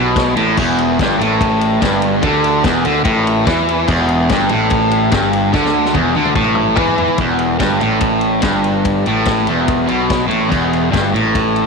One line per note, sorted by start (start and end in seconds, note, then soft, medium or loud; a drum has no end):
0.00 0.34 B1 medium
0.00 0.36 B2 loud
0.16 kick loud
0.16 snare loud
0.16 ride loud
0.37 0.56 A1 medium
0.37 0.57 A2 loud
0.37 ride medium
0.57 0.96 E1 medium
0.57 0.99 E2 loud
0.57 kick loud
0.57 crash loud
0.78 ride medium
0.99 1.18 G1 loud
0.99 1.20 G2 loud
0.99 kick loud
0.99 snare loud
0.99 ride loud
1.18 1.77 A1 loud
1.18 1.81 A2 loud
1.18 ride medium
1.41 kick loud
1.41 ride loud
1.61 ride medium
1.81 2.21 G1 medium
1.81 2.23 G2 loud
1.81 kick loud
1.81 snare loud
1.81 ride loud
2.02 ride medium
2.22 2.62 D2 medium
2.22 2.64 D3 loud
2.22 kick loud
2.22 ride loud
2.44 ride medium
2.64 2.84 E1 loud
2.64 2.84 E2 loud
2.64 kick loud
2.64 snare loud
2.64 ride loud
2.85 3.05 D2 loud
2.85 3.04 D3 loud
2.85 ride medium
3.04 3.44 A1 loud
3.04 3.46 A2 loud
3.04 kick loud
3.04 ride loud
3.27 ride medium
3.47 3.86 E2 loud
3.47 3.88 E3 loud
3.47 kick loud
3.47 snare loud
3.47 ride loud
3.69 ride medium
3.88 4.27 E1 loud
3.88 4.29 E2 loud
3.88 kick loud
3.88 crash loud
4.08 ride medium
4.29 4.49 G1 loud
4.29 4.51 G2 loud
4.29 kick loud
4.29 snare loud
4.29 ride loud
4.49 5.09 A1 loud
4.49 5.11 A2 loud
4.49 ride medium
4.70 kick loud
4.70 ride loud
4.91 ride medium
5.11 5.51 G1 loud
5.11 5.53 G2 loud
5.11 kick loud
5.11 snare loud
5.11 ride loud
5.33 ride medium
5.53 5.92 D2 loud
5.53 5.94 D3 loud
5.53 kick loud
5.53 snare medium
5.66 snare medium
5.85 snare medium
5.93 6.14 E1 loud
5.93 6.14 E2 loud
5.93 kick loud
5.93 high tom medium
6.15 6.35 D2 loud
6.15 6.35 D3 loud
6.15 high tom medium
6.25 mid tom medium
6.36 6.75 A1 loud
6.36 6.76 A2 loud
6.36 kick loud
6.44 mid tom medium
6.55 mid tom medium
6.76 7.16 E2 medium
6.76 7.18 E3 loud
6.76 kick loud
6.76 mid tom loud
6.87 floor tom medium
6.98 floor tom loud
7.08 floor tom medium
7.18 7.57 E1 medium
7.18 7.59 E2 loud
7.18 kick loud
7.18 ride medium
7.39 ride medium
7.59 7.79 G1 medium
7.59 7.80 G2 loud
7.59 kick loud
7.59 snare loud
7.59 ride medium
7.80 8.40 A1 medium
7.80 8.42 A2 medium
7.80 ride medium
8.01 kick loud
8.01 ride medium
8.21 ride medium
8.42 9.01 G1 medium
8.42 9.04 G2 loud
8.42 kick loud
8.42 snare loud
8.42 ride loud
8.64 ride medium
8.85 kick loud
8.85 ride loud
9.06 9.45 A1 loud
9.06 9.47 A2 loud
9.06 ride medium
9.25 kick loud
9.25 snare loud
9.25 ride medium
9.47 9.86 E1 loud
9.47 9.89 E2 medium
9.47 ride medium
9.68 kick loud
9.68 ride loud
9.87 10.28 B1 medium
9.87 10.28 B2 loud
9.87 ride medium
10.10 kick loud
10.10 snare loud
10.10 ride medium
10.28 10.50 A1 medium
10.28 10.50 A2 loud
10.28 ride medium
10.49 10.90 E1 medium
10.49 10.91 E2 loud
10.49 kick loud
10.49 crash medium
10.73 ride medium
10.92 11.12 G1 medium
10.92 11.12 G2 loud
10.92 kick loud
10.92 snare loud
10.92 ride medium
11.14 11.66 A1 loud
11.14 11.66 A2 loud
11.14 ride medium
11.35 kick loud
11.35 ride loud
11.56 ride medium